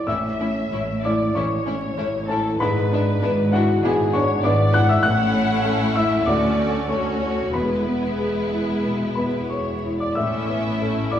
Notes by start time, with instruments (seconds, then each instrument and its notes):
0.07 double bass section A1, cello section A2, grand piano A2 E5 E6, viola section A3 C#4, violin section E4 E5
0.40 viola section A3 C#4, grand piano C#4, violin section E4
0.71 double bass section A1, cello section A2, viola section A3 C#4, violin section E4, grand piano C#5
1.02 viola section A3 C#4, violin section E4 D5, grand piano E4 D5 D6
1.34 double bass section A1, cello section A2, grand piano E3 C#5 C#6, viola section A3 C#4, violin section E4 C#5
1.66 viola section A3 C#4, grand piano C#4, violin section E4
1.97 double bass section A1, cello section A2, viola section A3 C#4, violin section E4, grand piano C#5
2.27 viola section A3 C#4, violin section E4 A4, grand piano E4 A4 A5
2.58 double bass section G#1, cello section G#2, grand piano G#2 B4 B5, viola section B3 D4, violin section E4 B4
2.91 viola section B3 D4, grand piano D4, violin section E4
3.22 double bass section G#1, cello section G#2, viola section B3 D4, violin section E4, grand piano B4
3.52 viola section B3 D4, grand piano E4 F#4 F#5, violin section E4 F#4
3.83 double bass section G#1, cello section G#2, grand piano G#2 G#4 G#5, viola section B3 D4, violin section E4 G#4
4.13 viola section B3 D4, grand piano D4 C#5 C#6, violin section E4 C#5
4.43 double bass section G#1, cello section G#2, viola section B3 D4, violin section E4 D5, grand piano B4 D5 D6
4.72 viola section B3 D4, violin section E4 F#5, grand piano E4 F#5 F#6
4.89 violin section E5, grand piano E5 E6
5.03 double bass section A1, cello section A2, grand piano A2 F#5 F#6, viola section A3 C#4, violin section E4 F#5
5.34 grand piano C#4
5.65 grand piano A4
5.94 grand piano E4 E5 E6, violin section E5
6.25 cello section D2, grand piano D2 D5 D6, double bass section D2, viola section A3 C#4, violin section F#4 D5
6.58 grand piano C#4
6.89 viola section A3 C#4, violin section F#4 C#5, grand piano A4 C#5 C#6
7.22 grand piano F#4
7.53 double bass section E1, grand piano E2 B4 B5, cello section E2, viola section G#3 B3, violin section E4 B4
7.88 grand piano B3
8.18 grand piano G#4
8.51 grand piano E4
8.85 grand piano B2
9.15 grand piano B3 B4 B5, violin section B4
9.49 grand piano G#4 C#5 C#6, violin section C#5
9.83 grand piano E4
9.99 violin section D5, grand piano D5 D6
10.14 double bass section A1, cello section A2, grand piano A2 E5 E6, viola section A3 C#4, violin section E4 E5
10.48 viola section B3, grand piano C#4
10.78 viola section A3 C#4, grand piano A4
11.11 viola section B3, grand piano E4 D5 D6, violin section D5